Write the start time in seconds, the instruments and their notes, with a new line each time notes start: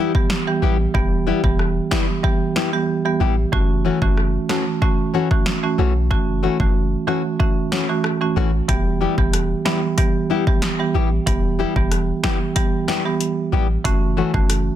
Already playing: marimba E3 G3 B3 G4, nylon-string guitar G3 B3
0.00 nylon-string guitar E4 G4
0.15 marimba E3 G3 B3 G4, kick
0.30 snare
0.47 marimba E3 G3 B3 G4
0.62 808-style bass A1, nylon-string guitar G3 B3 E4 G4
0.94 808-style bass E1, marimba E3 G3 B3 G4, kick
1.27 nylon-string guitar G3 B3 E4 G4
1.44 808-style bass E1, marimba E3 G3 B3 G4, kick
1.59 cross-stick
1.91 marimba E3 G3 B3 G4, nylon-string guitar G3 B3 E4 G4, kick, snare
2.23 marimba E3 G3 B3 G4, kick
2.56 nylon-string guitar G3 B3 E4 G4, snare
2.73 marimba E3 G3 B3 G4
3.05 marimba E3 G3 B3 G4
3.20 808-style bass A1, nylon-string guitar G3 B3 E4 G4
3.52 808-style bass F#1, marimba E3 A3 C#4 F#4, kick
3.85 nylon-string guitar E3 A3 C#4 F#4
4.02 808-style bass F#1, marimba E3 A3 C#4 F#4, kick
4.17 cross-stick
4.49 marimba E3 A3 C#4 F#4, nylon-string guitar E3 A3 C#4 F#4, snare
4.82 marimba E3 A3 C#4 F#4, kick
5.14 nylon-string guitar E3 A3 C#4 F#4
5.31 marimba E3 A3 C#4 F#4, kick
5.46 snare
5.63 marimba E3 A3 C#4 F#4
5.78 808-style bass B1, nylon-string guitar E3 A3 C#4 F#4
6.11 808-style bass F#1, marimba E3 A3 C#4 F#4, kick
6.43 nylon-string guitar E3 A3 C#4 F#4
6.60 808-style bass F#1, marimba E3 A3 C#4 F#4, kick
7.07 nylon-string guitar E3 A3 C#4 F#4, marimba E3 A3 C#4 F#4
7.39 marimba E3 A3 C#4 F#4, kick
7.72 nylon-string guitar E3 A3 C#4 F#4, snare
7.89 marimba E3 A3 C#4 F#4
8.04 cross-stick
8.21 marimba E3 A3 C#4 F#4
8.36 808-style bass A1, nylon-string guitar E3 A3 C#4 F#4
8.69 808-style bass E1, marimba E3 G3 B3 G4, kick, closed hi-hat
9.01 nylon-string guitar G3 B3 E4 G4
9.18 808-style bass E1, marimba E3 G3 B3 G4, kick
9.33 cross-stick, closed hi-hat
9.65 marimba E3 G3 B3 G4, nylon-string guitar G3 B3 E4 G4, snare
9.98 marimba E3 G3 B3 G4, kick, closed hi-hat
10.30 nylon-string guitar G3 B3 E4 G4
10.47 marimba E3 G3 B3 G4, kick
10.62 snare, closed hi-hat
10.79 marimba E3 G3 B3 G4
10.94 808-style bass A1, nylon-string guitar G3 B3 E4 G4
11.27 808-style bass E1, marimba E3 G3 B3 G4, kick, closed hi-hat
11.59 nylon-string guitar G3 B3 E4 G4
11.76 808-style bass E1, marimba E3 G3 B3 G4, kick
11.92 cross-stick, closed hi-hat
12.23 marimba E3 G3 B3 G4, nylon-string guitar G3 B3 E4 G4, kick, snare
12.56 marimba E3 G3 B3 G4, kick, closed hi-hat
12.88 nylon-string guitar G3 B3 E4 G4, snare
13.05 marimba E3 G3 B3 G4
13.21 closed hi-hat
13.52 808-style bass A1, nylon-string guitar G3 B3 E4 G4
13.85 808-style bass F#1, marimba E3 A3 C#4 F#4, kick, closed hi-hat
14.17 nylon-string guitar E3 A3 C#4 F#4
14.34 808-style bass F#1, marimba E3 A3 C#4 F#4, kick
14.50 cross-stick, closed hi-hat